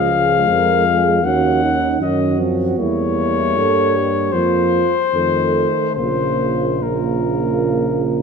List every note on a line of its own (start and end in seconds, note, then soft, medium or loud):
0.00 0.49 C#2 medium
0.00 1.26 F3 medium
0.00 1.25 G#3 medium
0.00 1.26 F5 medium
0.11 0.49 G#4 medium
0.48 1.25 F2 medium
0.48 0.86 A#4 medium
0.86 1.24 G#4 medium
1.23 2.00 D#2 medium
1.23 2.01 D#3 medium
1.23 2.00 C#4 medium
1.23 1.62 F#4 medium
1.23 2.01 F#5 medium
1.63 2.02 D#4 medium
2.00 2.77 F#2 medium
2.00 2.41 D#3 medium
2.00 2.39 C#4 medium
2.00 2.80 F#4 medium
2.00 2.40 D#5 medium
2.38 2.80 F3 medium
2.38 2.80 C4 medium
2.78 3.58 E2 medium
2.78 4.34 G3 medium
2.78 4.33 A#3 medium
2.78 3.57 E4 medium
2.78 4.34 C#5 medium
3.57 4.35 G2 medium
3.57 3.96 A4 medium
3.96 4.35 G4 medium
4.32 4.96 F2 medium
4.32 4.85 F3 soft
4.32 4.84 A#3 medium
4.32 4.98 F4 medium
4.32 5.94 C5 medium
5.13 5.66 F2 medium
5.13 5.99 D#3 medium
5.13 5.99 A3 medium
5.13 5.96 A4 medium
5.95 8.22 A#1 medium
5.95 6.83 C#3 soft
5.95 6.81 A#3 soft
5.95 8.22 F4 medium
5.95 6.84 C5 medium
6.82 8.22 C#3 medium
6.82 8.22 A#3 medium
6.82 8.22 A#4 medium